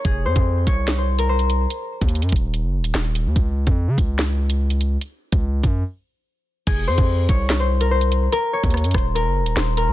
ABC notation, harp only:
X:1
M:4/4
L:1/16
Q:1/4=145
K:Fphr
V:1 name="Harp"
A2 c2 z2 d3 c2 B c4 | z16 | z16 | z16 |
A2 c2 z2 d3 c2 B c4 | B2 d2 z2 c2 B4 c2 B2 |]